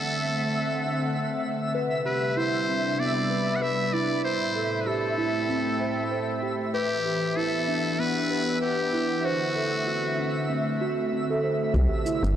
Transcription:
0.00 1.74 D3 medium
0.00 1.74 A3 medium
0.00 2.76 C4 medium
0.00 0.25 D4 medium
0.00 1.39 A4 loud
0.00 5.26 E5 medium
0.00 11.76 E5 medium
0.00 0.21 F#5 medium
0.22 2.76 F#5 medium
1.75 4.25 C3 medium
1.75 1.85 B4 medium
1.98 4.25 G3 medium
2.05 2.35 G4 medium
2.05 2.39 B4 medium
2.32 5.26 D4 medium
2.37 2.67 E4 medium
2.37 3.01 C5 medium
2.69 2.86 C4 medium
2.89 7.75 B5 medium
2.99 3.10 B3 medium
2.99 3.57 D5 medium
3.30 3.60 B4 medium
3.56 3.64 F#5 medium
3.62 3.79 B4 medium
3.62 3.95 E5 medium
3.93 4.23 E4 medium
3.93 4.24 D5 medium
4.24 6.74 A2 medium
4.24 4.35 C5 medium
4.24 4.82 C5 medium
4.55 4.85 A4 medium
4.75 6.74 A3 medium
4.81 4.89 B4 medium
4.87 5.17 G4 medium
4.87 6.43 A4 medium
5.06 6.74 C4 medium
5.18 5.35 E4 medium
5.32 6.74 G5 medium
5.49 5.60 C4 medium
5.80 6.10 C5 medium
6.11 6.29 C5 medium
6.43 6.73 G4 medium
6.74 9.24 E3 medium
6.74 7.38 G4 loud
6.74 6.85 B4 medium
7.05 7.35 G4 medium
7.29 9.24 B3 medium
7.29 10.25 D4 medium
7.37 7.67 E4 medium
7.37 8.01 A4 medium
7.60 10.25 F#5 medium
7.68 7.85 D4 medium
7.88 9.24 G4 medium
7.99 8.10 B3 medium
7.99 8.61 B4 loud
8.30 8.60 B4 medium
8.61 9.26 G4 medium
8.61 8.79 B4 medium
8.93 9.23 E4 medium
9.23 11.74 D3 medium
9.23 10.50 F#4 medium
9.23 9.35 C5 medium
9.55 11.74 A3 medium
9.55 9.85 A4 medium
9.74 11.75 C4 medium
9.87 10.17 F#4 medium
10.18 10.36 D4 medium
10.39 12.36 E5 medium
10.50 10.60 C4 medium
10.81 10.98 F#4 medium
11.12 11.28 C4 medium
11.30 11.38 A4 medium
11.44 11.61 C5 medium
11.73 11.88 C2 medium
11.73 12.36 C3 medium
11.73 12.04 G4 medium
11.73 12.36 A5 medium
11.73 kick loud
11.73 shaker soft
11.96 12.36 G3 medium
12.05 12.23 E4 medium
12.05 12.36 D5 medium
12.05 shaker medium
12.11 12.36 B4 medium
12.23 12.36 G1 loud
12.23 shaker soft

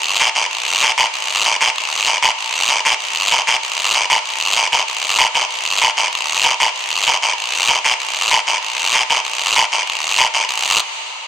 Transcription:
0.20 short guiro medium
0.35 short guiro medium
0.51 long guiro medium
0.83 short guiro medium
0.98 short guiro medium
1.14 long guiro medium
1.45 short guiro medium
1.61 short guiro medium
1.76 long guiro medium
2.07 short guiro medium
2.23 short guiro medium
2.39 long guiro medium
2.69 short guiro medium
2.85 short guiro medium
3.00 long guiro medium
3.32 short guiro medium
3.47 short guiro medium
3.63 long guiro medium
3.95 short guiro medium
4.10 short guiro medium
4.25 long guiro medium
4.56 short guiro medium
4.72 short guiro medium
4.88 long guiro medium
5.19 short guiro medium
5.35 short guiro medium
5.51 long guiro medium
5.82 short guiro medium
5.97 short guiro medium
6.13 long guiro medium
6.44 short guiro medium
6.60 short guiro medium
6.76 long guiro medium
7.07 short guiro medium
7.22 short guiro medium
7.38 long guiro medium
7.68 short guiro medium
7.85 short guiro medium
8.00 long guiro medium
8.31 short guiro medium
8.47 short guiro medium
8.63 long guiro medium
8.94 short guiro medium
9.10 short guiro medium
9.25 long guiro medium
9.56 short guiro medium
9.72 short guiro medium
9.87 long guiro medium
10.19 short guiro medium
10.34 short guiro medium
10.49 long guiro loud

